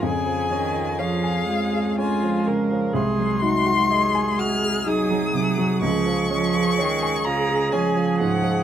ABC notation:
X:1
M:3/4
L:1/16
Q:1/4=62
K:Db
V:1 name="Violin"
a4 f4 a2 z2 | c'6 f'2 e'4 | d'6 b2 a2 g2 |]
V:2 name="Viola"
A4 A4 F2 B2 | A2 G2 A8 | A12 |]
V:3 name="Grand piano"
F,, F, D F d a F A D F, D, F, | C,, G, E G e a G A E G, C, G, | D,, F, D F d a F A D F, A,, F, |]
V:4 name="Cello" clef=bass
D,2 E,2 F,2 A,6 | A,8 G,2 G,2 | F,2 F,2 E,2 D,2 F,4 |]